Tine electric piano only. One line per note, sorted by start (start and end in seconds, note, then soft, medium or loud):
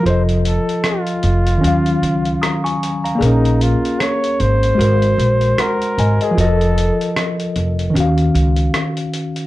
0.00 1.57 F3 medium
0.00 1.58 F4 medium
0.07 1.60 A4 medium
0.07 1.62 D#5 medium
1.58 3.15 D#3 medium
1.58 3.16 C#4 medium
1.64 3.18 F#3 medium
1.64 2.42 F5 medium
2.42 2.63 A#5 soft
2.42 2.63 D#6 medium
2.64 3.02 G#5 medium
2.64 3.02 C#6 medium
3.04 3.42 F5 soft
3.04 3.41 A#5 medium
3.15 4.72 A#3 medium
3.15 4.74 G#4 medium
3.22 4.78 C#4 medium
3.22 4.76 A#4 medium
4.75 6.31 G#3 medium
4.75 6.33 F#4 medium
4.81 5.57 A#4 medium
4.81 5.59 C5 medium
5.59 5.96 F#5 soft
5.59 5.95 C6 medium
5.99 6.20 D#5 medium
5.99 6.20 G#5 medium
6.22 6.59 A#4 medium
6.22 6.39 D#5 medium
6.31 7.88 F3 medium
6.31 7.90 F4 medium
6.38 6.44 F#4 medium
6.38 7.93 D#5 medium
6.45 7.95 A4 medium
7.90 9.47 D#3 medium
7.90 9.47 C#4 medium
7.97 9.47 F#4 medium
7.97 9.47 F5 medium